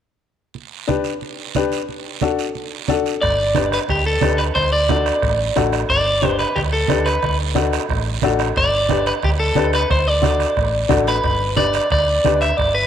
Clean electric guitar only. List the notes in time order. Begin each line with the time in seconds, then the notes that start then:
3.21 D5
3.73 B4
3.90 G4
4.06 A4
4.38 B4
4.55 C5
4.72 D5
5.90 D5
6.39 B4
6.56 G4
6.73 A4
7.06 B4
8.57 D5
9.07 B4
9.24 G4
9.40 A4
9.75 B4
9.91 C5
10.07 D5
11.08 B4
11.57 D5
11.92 D5
12.41 E5
12.57 D5
12.74 B4